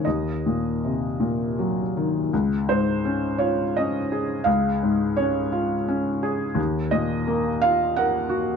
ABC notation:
X:1
M:3/4
L:1/8
Q:1/4=84
K:Db
V:1 name="Felt piano"
e4 z2 | z c2 d e2 | f2 d3 z | z e2 f g2 |]
V:2 name="Felt piano" clef=bass
E,, B,, C, B,, G, E, | D,, A,, D F D A | D,, A,, D F D A | E,, B,, B, F B G |]